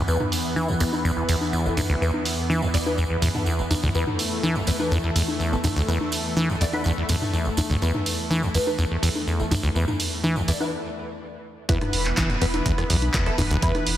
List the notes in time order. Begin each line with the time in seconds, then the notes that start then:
Already playing: E2 E3 B3
0.08 E2 B3 E4 B4, tambourine
0.20 mid tom, high conga
0.32 open hi-hat, tambourine
0.44 tambourine
0.56 E3, tambourine, high conga
0.68 E2, tambourine
0.80 E2 B3 E4 B4, open hi-hat, tambourine
0.92 B3 E4 B4, tambourine, high conga
1.05 E2, tambourine
1.17 E2
1.29 E2, open hi-hat, tambourine
1.41 tambourine, high conga
1.53 E2, tambourine
1.65 E1 B3 E4 A4, tambourine
1.77 E2, mid tom, open hi-hat, tambourine, high conga
1.89 D2, tambourine
2.01 E2 B3 E4 B4, tambourine
2.14 high conga
2.25 open hi-hat, tambourine
2.38 tambourine
2.50 E3, tambourine, high conga
2.62 E2, tambourine
2.74 E2 B3 E4 D5, open hi-hat, tambourine
2.86 B3 E4 B4, tambourine, high conga
2.98 E2, tambourine
3.10 E2
3.22 E2, mid tom, open hi-hat, tambourine
3.35 B3 E4 A4, mid tom, tambourine, high conga
3.46 E2, tambourine
3.59 E1, tambourine
3.71 E2, open hi-hat, tambourine, high conga
3.83 D2, mid tom, tambourine
3.94 E2 A3 B3 E4 B4, tambourine
4.07 mid tom, high conga
4.19 open hi-hat, tambourine
4.31 tambourine
4.43 E3, tambourine, high conga
4.55 E2, tambourine
4.67 E2 B3 E4 B4, open hi-hat, tambourine
4.79 B3 E4 B4, tambourine, high conga
4.91 E2, tambourine
5.04 E2
5.16 E2, open hi-hat, tambourine
5.28 tambourine, high conga
5.40 E2, tambourine
5.52 E1 B3 E4 A4, tambourine
5.64 E2, mid tom, open hi-hat, tambourine, high conga
5.76 D2, tambourine
5.88 E2 B3 E4 B4, tambourine
6.01 high conga
6.12 open hi-hat, tambourine
6.25 tambourine
6.36 E3, tambourine, high conga
6.49 E2, tambourine
6.61 E2 B3 E4 D5, open hi-hat, tambourine
6.73 B3 E4 B4, tambourine, high conga
6.84 E2, tambourine
6.97 E2
7.09 E2, mid tom, open hi-hat, tambourine
7.22 mid tom, tambourine, high conga
7.33 E2, tambourine
7.45 E1, tambourine
7.57 E2, open hi-hat, tambourine, high conga
7.70 D2, mid tom, tambourine
7.82 E2 B3 E4 B4, tambourine
7.94 mid tom, high conga
8.06 open hi-hat, tambourine
8.19 tambourine
8.30 E3, tambourine, high conga
8.43 E2, tambourine
8.54 E2 B3 E4 B4, open hi-hat, tambourine
8.67 B3 E4 B4, tambourine, high conga
8.78 E2, tambourine
8.91 E2
9.03 E2, open hi-hat, tambourine
9.15 tambourine, high conga
9.27 E2, tambourine
9.39 E1 B3 E4 A4, tambourine
9.51 E2, mid tom, open hi-hat, tambourine, high conga
9.63 D2, tambourine
9.75 E2 B3 E4 B4, tambourine
9.88 mid tom, tambourine, high conga
10.00 open hi-hat, tambourine
10.12 tambourine
10.24 E3, tambourine, high conga
10.36 E2, tambourine
10.48 E2 B3 E4 D5, open hi-hat, tambourine
10.60 B3 E4 B4, tambourine, high conga
11.69 E2 E3 B3 E4 B4, kick, closed hi-hat
11.81 cross-stick, closed hi-hat, mid tom, high conga
11.93 E1, open hi-hat
12.05 clap, closed hi-hat
12.17 E1 E3, kick, clap, closed hi-hat, high conga
12.30 E2, closed hi-hat
12.41 E1 E2 B3 E4 B4, open hi-hat
12.54 B3 E4 B4, closed hi-hat, high conga
12.66 E2, kick, closed hi-hat
12.78 E2, cross-stick, closed hi-hat
12.90 B1 E2, open hi-hat
13.02 closed hi-hat, high conga
13.14 E2, kick, clap, closed hi-hat
13.26 E1 B3 E4 A4, cross-stick, closed hi-hat
13.38 E1 E2, mid tom, open hi-hat, high conga
13.50 D2, closed hi-hat
13.62 E2 B3 E4 B4, kick, closed hi-hat
13.75 cross-stick, closed hi-hat, high conga
13.87 E1, open hi-hat